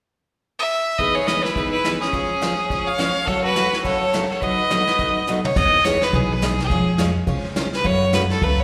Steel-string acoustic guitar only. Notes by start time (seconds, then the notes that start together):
1.00 E3 B3 D#4 G#4
1.28 E3 B3 D#4 G#4
1.56 E3 B3 D#4 G#4
1.85 E3 B3 D#4 G#4
2.13 F3 G#3 C#4 F4 C#5
2.41 F3 G#3 C#4 F4 C#5
2.71 F3 G#3 C#4 F4 C#5
2.98 F3 G#3 C#4 F4 C#5
3.28 F#2 C#3 F#3 A3 C#4 F#4
3.56 F#2 C#3 F#3 A3 C#4 F#4
3.85 F#2 C#3 F#3 A3 C#4 F#4
4.13 F#2 C#3 F#3 A3 C#4 F#4
4.42 B2 F#3 A3 D#4 F#4
4.71 B2 F#3 A3 D#4 F#4
4.99 B2 F#3 A3 D#4 F#4
5.28 B2 F#3 A3 D#4 F#4
5.57 E3 B3 D#4 G#4
5.85 E3 B3 D#4 G#4
6.14 E3 B3 D#4 G#4
6.42 E3 B3 D#4 G#4
6.71 F3 G#3 C#4 F4 C#5
6.99 F3 G#3 C#4 F4 C#5
7.27 F3 G#3 C#4 F4 C#5
7.56 F3 G#3 C#4 F4 C#5
7.84 C#3 F#3 A3 C#4 F#4
8.13 C#3 F#3 A3 C#4 F#4
8.42 C#3 F#3 A3 C#4 F#4